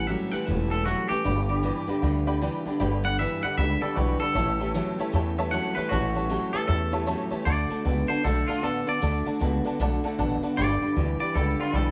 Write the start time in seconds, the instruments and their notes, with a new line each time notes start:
Already playing: upright bass A1
0.07 clean electric guitar A2 F#3 E5, steel-string acoustic guitar A2 E3 G3 C#4 G4 A4
0.32 clean electric guitar A2 E3 F#5, steel-string acoustic guitar G3 C#4 G4 A4, muted upright bass stroke
0.46 upright bass E1, clean electric guitar A2 E3 E5, steel-string acoustic guitar G3 C#4 G4 A4
0.71 clean electric guitar A2 E3 A4, steel-string acoustic guitar G3 C#4 G4 A4
0.86 clean electric guitar A2 F#3 F#4, steel-string acoustic guitar A2 E3 G3 C#4 G4 A4
1.09 clean electric guitar A2 E3 G4, steel-string acoustic guitar G3 C#4 G4 A4, muted upright bass stroke
1.24 upright bass G1, clean electric guitar G2 D3, steel-string acoustic guitar G3 D4 G4 B4, honky-tonk piano D5 G5 B5
1.49 clean electric guitar G2 D3, steel-string acoustic guitar D4 G4 B4, honky-tonk piano D5 G5 B5
1.63 clean electric guitar G2 E3, steel-string acoustic guitar G3 D4 G4 B4, honky-tonk piano D5 G5 B5
1.87 clean electric guitar G2 D3, steel-string acoustic guitar D4 G4 B4, honky-tonk piano D5 G5 B5, muted upright bass stroke
2.02 upright bass D2, clean electric guitar G2 D3, steel-string acoustic guitar G3 D4 G4 B4, honky-tonk piano D5 G5 B5
2.27 clean electric guitar G2 D3, steel-string acoustic guitar D4 G4 B4, honky-tonk piano D5 G5 B5
2.42 clean electric guitar G2 E3, steel-string acoustic guitar G3 D4 G4 B4, honky-tonk piano D5 G5 B5
2.65 clean electric guitar G2 D3, steel-string acoustic guitar D4 G4 B4, honky-tonk piano D5 G5 B5, muted upright bass stroke
2.79 upright bass G1, clean electric guitar G2 D3, steel-string acoustic guitar G3 D4 G4 B4, honky-tonk piano D5 G5 B5
3.04 clean electric guitar G2 D3 F#5, steel-string acoustic guitar D4 G4 B4, honky-tonk piano D5 G5 B5
3.18 clean electric guitar G2 E3 E5, steel-string acoustic guitar G3 D4 G4 B4, honky-tonk piano D5 G5 B5
3.43 clean electric guitar G2 D3 F#5, steel-string acoustic guitar D4 G4 B4, honky-tonk piano D5 G5 B5, muted upright bass stroke
3.58 upright bass C#2, clean electric guitar G2 D3 E5, steel-string acoustic guitar G3 D4 G4 B4, honky-tonk piano D5 G5 B5
3.81 clean electric guitar G2 D3 A4, steel-string acoustic guitar D4 G4 B4, honky-tonk piano D5 G5 B5, muted upright bass stroke
3.95 upright bass B1, clean electric guitar G2 E3 F#4, steel-string acoustic guitar G3 D4 G4 B4, honky-tonk piano D5 G5 B5
4.20 clean electric guitar G2 D3 A4, steel-string acoustic guitar D4 G4 B4, honky-tonk piano D5 G5 B5, muted upright bass stroke
4.35 upright bass A1, steel-string acoustic guitar A2 E3 G3 C#4 G4 A4, clean electric guitar A2 E3, honky-tonk piano C#5 E5 A5
4.59 clean electric guitar A2 E3, steel-string acoustic guitar G3 C#4 G4 A4, honky-tonk piano C#5 E5 A5
4.74 steel-string acoustic guitar A2 E3 G3 C#4 G4 A4, clean electric guitar A2 F#3, honky-tonk piano C#5 E5 A5
4.98 clean electric guitar A2 E3, steel-string acoustic guitar G3 C#4 G4 A4, honky-tonk piano C#5 E5 A5, muted upright bass stroke
5.12 upright bass E2, clean electric guitar A2 E3, steel-string acoustic guitar G3 C#4 G4 A4, honky-tonk piano C#5 E5 A5
5.37 clean electric guitar A2 E3, steel-string acoustic guitar G3 C#4 G4 A4, honky-tonk piano C#5 E5 A5
5.51 steel-string acoustic guitar A2 E3 G3 C#4 G4 A4, clean electric guitar A2 F#3 F#5, honky-tonk piano C#5 E5 A5
5.75 clean electric guitar A2 E3 B4, steel-string acoustic guitar C#4 G4 A4, honky-tonk piano C#5 E5 A5, muted upright bass stroke
5.79 steel-string acoustic guitar G3
5.89 upright bass A1, clean electric guitar A2 E3 F#4, steel-string acoustic guitar A2 E3 G3 C#4 G4 A4, honky-tonk piano C#5 E5 A5
6.15 clean electric guitar A2 E3, steel-string acoustic guitar G3 C#4 G4 A4, honky-tonk piano C#5 E5 A5
6.29 clean electric guitar A2 F#3, steel-string acoustic guitar A2 E3 G3 C#4 G4 A4, honky-tonk piano C#5 E5 A5
6.53 clean electric guitar A2 E3 A4, steel-string acoustic guitar G3 C#4 G4 A4, honky-tonk piano C#5 E5 A5, muted upright bass stroke
6.67 upright bass E2, clean electric guitar A2 E3 A4, steel-string acoustic guitar G3 C#4 G4 A4, honky-tonk piano C#5 E5 A5
6.92 clean electric guitar A2 E3, steel-string acoustic guitar G3 C#4 G4 A4, honky-tonk piano C#5 E5 A5
7.06 steel-string acoustic guitar A2 E3 G3 C#4 G4 A4, clean electric guitar A2 F#3, honky-tonk piano C#5 E5 A5
7.30 clean electric guitar A2 E3, steel-string acoustic guitar G3 C#4 G4 A4, honky-tonk piano C#5 E5 A5, muted upright bass stroke
7.45 upright bass D2, steel-string acoustic guitar D3 A3 D4 F#4 A4, clean electric guitar D3 A3 D5, honky-tonk piano D5 F#5 A5
7.69 clean electric guitar D3 A3, steel-string acoustic guitar D4 F#4 A4, honky-tonk piano D5 F#5 A5, muted upright bass stroke
7.84 upright bass C#2, clean electric guitar D3 B3, steel-string acoustic guitar A3 D4 F#4 A4, honky-tonk piano D5 F#5 A5
8.08 clean electric guitar D3 B3 C5, steel-string acoustic guitar D4 F#4 A4, honky-tonk piano D5 F#5 A5
8.23 upright bass B1, clean electric guitar D3 A3 A4, steel-string acoustic guitar D3 A3 D4 F#4 A4, honky-tonk piano D5 F#5 A5
8.48 clean electric guitar D3 A3 F4, steel-string acoustic guitar D4 F#4 A4, honky-tonk piano D5 F#5 A5
8.62 upright bass A1, clean electric guitar D3 B3 A4, steel-string acoustic guitar A3 D4 F#4 A4, honky-tonk piano D5 F#5 A5
8.87 clean electric guitar D3 B3 D5, steel-string acoustic guitar D4 F#4 A4, honky-tonk piano D5 F#5 A5, muted upright bass stroke
9.01 upright bass D2, steel-string acoustic guitar D3 A3 D4 F#4 A4, clean electric guitar D3 A3, honky-tonk piano D5 F#5 A5
9.25 clean electric guitar D3 A3, steel-string acoustic guitar D4 F#4 A4, honky-tonk piano D5 F#5 A5, muted upright bass stroke
9.39 upright bass C#2, clean electric guitar D3 B3, steel-string acoustic guitar A3 D4 F#4 A4, honky-tonk piano D5 F#5 A5
9.65 clean electric guitar D3 B3, steel-string acoustic guitar D4 F#4 A4, honky-tonk piano D5 F#5 A5, muted upright bass stroke
9.79 upright bass B1, steel-string acoustic guitar D3 A3 D4 F#4 A4, clean electric guitar D3 A3, honky-tonk piano D5 F#5 A5
10.04 clean electric guitar D3 A3, steel-string acoustic guitar D4 F#4 A4, honky-tonk piano D5 F#5 A5
10.18 upright bass A1, clean electric guitar D3 B3, steel-string acoustic guitar A3 D4 F#4 A4, honky-tonk piano D5 F#5 A5
10.42 clean electric guitar D3 B3, steel-string acoustic guitar D4 F#4 A4, honky-tonk piano D5 F#5 A5, muted upright bass stroke
10.57 upright bass G1, clean electric guitar G2 D3 D5, steel-string acoustic guitar G3 D4 G4 B4, honky-tonk piano D5 G5 B5
10.82 clean electric guitar G2 D3, steel-string acoustic guitar D4 G4 B4, honky-tonk piano D5 G5 B5, muted upright bass stroke
10.96 upright bass D2, clean electric guitar G2 E3, steel-string acoustic guitar G3 D4 G4 B4, honky-tonk piano D5 G5 B5
11.20 clean electric guitar G2 E3 D5, steel-string acoustic guitar D4 G4 B4, honky-tonk piano D5 G5 B5
11.35 upright bass C#2, clean electric guitar G2 D3 A4, steel-string acoustic guitar G3 D4 G4 B4, honky-tonk piano D5 G5 B5
11.59 clean electric guitar G2 D3 F4, steel-string acoustic guitar D4 G4 B4, honky-tonk piano D5 G5 B5
11.73 upright bass B1, clean electric guitar G2 E3 A4, steel-string acoustic guitar G3 D4 G4, honky-tonk piano D5 G5 B5
11.77 steel-string acoustic guitar B4